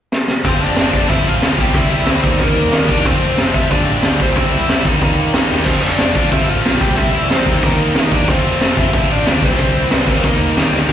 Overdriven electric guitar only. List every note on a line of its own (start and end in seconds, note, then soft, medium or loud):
0.45 0.60 C4 medium
0.45 0.64 C5 loud
0.62 1.07 D4 medium
0.62 1.08 D5 medium
1.09 1.24 E4 medium
1.09 1.28 E5 loud
1.28 1.57 F4 medium
1.28 1.61 F5 loud
1.61 1.75 G4 medium
1.61 1.79 G5 loud
1.78 1.92 E4 medium
1.78 1.92 E5 loud
1.93 2.08 E4 medium
1.93 2.08 E5 loud
2.10 2.40 C4 medium
2.10 2.43 C5 loud
2.42 2.87 A#3 medium
2.42 2.92 A#4 loud
2.90 3.05 D4 medium
2.90 3.05 D5 medium
3.07 3.52 C4 medium
3.07 3.57 C5 medium
3.54 3.70 E4 medium
3.54 3.70 E5 loud
3.70 4.17 D4 medium
3.70 4.21 D5 loud
4.22 4.36 C4 medium
4.22 4.36 C5 medium
4.37 4.52 C4 medium
4.37 4.53 C5 medium
4.52 4.83 E4 medium
4.52 4.83 E5 medium
5.65 5.82 C4 medium
5.65 5.81 C5 loud
5.82 6.29 D4 medium
5.82 6.32 D5 medium
6.32 6.48 E4 medium
6.32 6.50 E5 loud
6.49 6.79 F4 medium
6.49 6.82 F5 medium
6.81 6.97 G4 medium
6.81 6.97 G5 loud
6.96 7.12 E4 medium
6.96 7.11 E5 loud
7.13 7.29 E4 medium
7.13 7.30 E5 loud
7.32 7.61 C4 medium
7.32 7.65 C5 medium
7.65 8.10 A#3 medium
7.65 8.14 A#4 medium
8.14 8.28 D4 medium
8.14 8.30 D5 loud
8.29 8.74 C4 medium
8.29 8.79 C5 medium
8.79 9.08 E4 medium
8.79 9.08 E5 loud
9.11 9.41 D4 medium
9.11 9.41 D5 medium
9.43 10.04 C4 medium
9.43 9.91 C5 loud
9.91 10.11 B4 loud
10.10 10.24 C4 medium
10.10 10.28 C5 medium
10.27 10.56 A#3 medium
10.27 10.58 A#4 medium
10.58 10.80 G3 medium
10.58 10.82 G4 medium